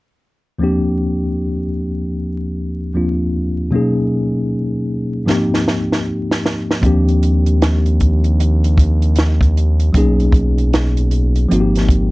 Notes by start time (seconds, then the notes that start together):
0.59 D#2 F3 A#3 C4
0.63 D4 G4
2.94 D#2 F3 A#3 C4 D4 F4
3.71 B2 F#3 A#3 C#4 D#4
3.76 G#4
5.25 G#2 F3 A#3 C4
5.29 D#4 G4, snare
5.54 snare
5.68 snare
5.92 snare
6.31 snare
6.46 snare
6.71 snare
6.81 D#2 F3 A#3 C4 D4, kick, closed hi-hat
6.86 G4
7.08 closed hi-hat
7.23 closed hi-hat
7.46 closed hi-hat
7.62 snare, closed hi-hat
7.86 closed hi-hat
8.00 kick, closed hi-hat
8.24 closed hi-hat
8.40 closed hi-hat
8.64 closed hi-hat
8.78 kick, closed hi-hat
9.02 closed hi-hat
9.16 snare, closed hi-hat
9.41 kick, closed hi-hat
9.57 closed hi-hat
9.80 closed hi-hat
9.93 B1 F#3 A#3 C#4, kick, closed hi-hat
9.97 D#4 G#4
10.20 closed hi-hat
10.32 kick, closed hi-hat
10.58 closed hi-hat
10.73 snare, closed hi-hat
10.97 closed hi-hat
11.11 closed hi-hat
11.36 closed hi-hat
11.49 G#1 F3 A#3 C4 D#4, closed hi-hat
11.54 F#4
11.60 G4
11.75 snare, closed hi-hat
11.89 kick, closed hi-hat